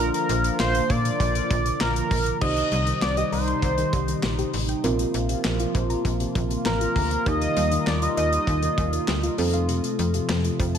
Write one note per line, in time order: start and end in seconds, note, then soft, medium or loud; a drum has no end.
0.00 0.11 A#1 loud
0.00 2.39 D3 medium
0.00 2.39 F3 medium
0.00 2.39 A#3 medium
0.00 2.07 D4 medium
0.00 2.07 F4 medium
0.00 2.39 F4 medium
0.00 0.13 A#4 loud
0.00 2.07 A#4 medium
0.14 0.56 A#4 medium
0.14 closed hi-hat medium
0.29 0.51 A#1 loud
0.29 closed hi-hat medium
0.44 closed hi-hat medium
0.60 0.81 A#1 loud
0.60 0.92 C5 loud
0.60 snare loud
0.60 clap loud
0.75 closed hi-hat medium
0.90 1.11 A#2 medium
0.90 1.80 D5 loud
0.90 kick medium
0.90 closed hi-hat medium
1.05 closed hi-hat medium
1.20 1.41 A#1 loud
1.20 kick medium
1.20 closed hi-hat medium
1.35 closed hi-hat medium
1.51 1.72 A#1 loud
1.51 kick loud
1.51 closed hi-hat medium
1.66 closed hi-hat medium
1.81 2.02 A#1 medium
1.81 2.37 A#4 loud
1.81 snare loud
1.81 clap medium
1.96 closed hi-hat medium
2.11 2.32 A#1 medium
2.11 kick medium
2.11 open hi-hat medium
2.26 closed hi-hat medium
2.41 2.63 C2 loud
2.41 7.22 C3 medium
2.41 2.51 D#3 medium
2.41 4.81 D#3 medium
2.41 4.81 G3 medium
2.41 4.80 D#4 medium
2.41 4.81 D#4 medium
2.41 4.80 G4 medium
2.41 4.80 C5 medium
2.41 2.98 D#5 loud
2.41 kick loud
2.41 crash medium
2.57 2.67 D#3 medium
2.57 closed hi-hat medium
2.72 2.93 C2 loud
2.72 2.82 G3 medium
2.72 closed hi-hat medium
2.87 2.97 D#3 medium
2.87 closed hi-hat medium
3.02 3.23 C2 loud
3.02 3.12 G3 medium
3.02 3.16 D5 loud
3.02 snare loud
3.02 clap medium
3.17 3.27 G4 medium
3.17 3.24 D#5 loud
3.17 closed hi-hat medium
3.32 3.54 C2 medium
3.32 4.50 C5 loud
3.32 3.42 D#5 loud
3.32 open hi-hat soft
3.48 3.58 C6 medium
3.48 closed hi-hat medium
3.62 3.84 C2 loud
3.62 3.73 D#3 medium
3.62 kick medium
3.62 closed hi-hat medium
3.78 3.88 D#3 medium
3.78 closed hi-hat medium
3.93 4.14 C2 loud
3.93 4.03 G3 medium
3.93 kick loud
3.93 closed hi-hat medium
4.08 4.18 D#3 medium
4.08 closed hi-hat medium
4.23 4.45 A#1 loud
4.23 4.33 G3 medium
4.23 snare loud
4.23 clap medium
4.38 4.48 G4 medium
4.38 closed hi-hat medium
4.53 4.75 A1 medium
4.53 open hi-hat medium
4.69 4.79 G5 loud
4.69 closed hi-hat medium
4.84 5.05 A#1 loud
4.84 4.94 C3 medium
4.84 7.24 F3 medium
4.84 9.34 A#3 medium
4.84 7.22 C4 medium
4.84 7.22 F4 medium
4.84 10.78 F4 medium
4.84 7.22 A#4 medium
4.84 closed hi-hat medium
4.99 5.09 C3 medium
4.99 closed hi-hat medium
5.14 5.35 A#1 loud
5.14 5.24 F3 medium
5.14 closed hi-hat medium
5.29 5.39 C3 medium
5.29 closed hi-hat medium
5.45 5.66 A#1 loud
5.45 5.54 F3 medium
5.45 snare loud
5.45 clap medium
5.60 5.70 F4 medium
5.60 closed hi-hat medium
5.75 5.96 A#1 loud
5.75 5.85 C5 loud
5.75 kick medium
5.75 closed hi-hat medium
5.90 6.00 A#5 medium
5.90 closed hi-hat medium
6.05 6.26 A#1 loud
6.05 6.15 C3 medium
6.05 kick medium
6.05 closed hi-hat medium
6.20 6.30 C3 medium
6.20 closed hi-hat medium
6.35 6.57 A#1 loud
6.35 6.45 F3 medium
6.35 kick loud
6.35 closed hi-hat medium
6.50 6.60 C3 medium
6.50 closed hi-hat medium
6.65 6.87 A1 loud
6.65 6.76 F3 medium
6.65 7.28 A#4 loud
6.65 snare loud
6.65 clap medium
6.81 6.91 F4 medium
6.81 closed hi-hat medium
6.96 7.17 D2 medium
6.96 kick medium
6.96 open hi-hat medium
7.11 7.21 F5 loud
7.11 closed hi-hat medium
7.26 7.48 D#2 loud
7.26 7.36 D#3 medium
7.26 9.36 G3 medium
7.26 9.36 D#4 medium
7.26 9.34 D#4 medium
7.26 9.34 G4 medium
7.26 9.34 A#4 medium
7.26 7.88 D#5 loud
7.26 kick loud
7.26 closed hi-hat medium
7.41 7.51 D#3 medium
7.41 closed hi-hat medium
7.57 7.78 D#2 loud
7.57 7.67 G3 medium
7.57 closed hi-hat medium
7.72 7.82 D#3 medium
7.72 closed hi-hat medium
7.87 8.08 D#2 loud
7.87 7.97 G3 medium
7.87 8.04 D5 loud
7.87 snare loud
7.87 clap medium
8.02 8.12 F4 medium
8.02 8.17 D#5 loud
8.02 closed hi-hat medium
8.17 8.38 D#2 loud
8.17 8.27 D#5 loud
8.17 9.34 D#5 loud
8.17 closed hi-hat medium
8.32 8.42 A#5 medium
8.32 closed hi-hat medium
8.47 8.69 D#2 loud
8.47 8.57 D#3 medium
8.47 kick medium
8.47 closed hi-hat medium
8.63 8.73 D#3 medium
8.63 closed hi-hat medium
8.78 8.99 D#2 loud
8.78 8.88 G3 medium
8.78 kick loud
8.78 closed hi-hat medium
8.93 9.03 D#3 medium
8.93 closed hi-hat medium
9.08 9.29 D2 loud
9.08 9.18 G3 medium
9.08 snare loud
9.08 clap medium
9.23 9.33 F4 medium
9.23 closed hi-hat medium
9.38 9.81 F2 loud
9.38 10.78 C3 medium
9.38 10.78 F3 medium
9.38 10.78 A3 medium
9.38 10.78 C4 medium
9.38 10.78 F4 medium
9.38 10.78 A4 medium
9.38 open hi-hat medium
9.53 9.64 F5 loud
9.53 closed hi-hat medium
9.69 9.79 C3 medium
9.69 closed hi-hat medium
9.84 9.94 C3 medium
9.84 closed hi-hat medium
9.99 10.20 F2 medium
9.99 10.09 F3 medium
9.99 closed hi-hat medium
10.14 10.24 C3 medium
10.14 closed hi-hat medium
10.29 10.51 F2 loud
10.29 10.39 F3 medium
10.29 snare loud
10.29 clap medium
10.44 10.54 F4 medium
10.44 closed hi-hat medium
10.59 10.78 F2 medium
10.59 10.69 C5 loud
10.59 kick medium
10.59 closed hi-hat medium
10.75 10.78 A5 medium
10.75 closed hi-hat medium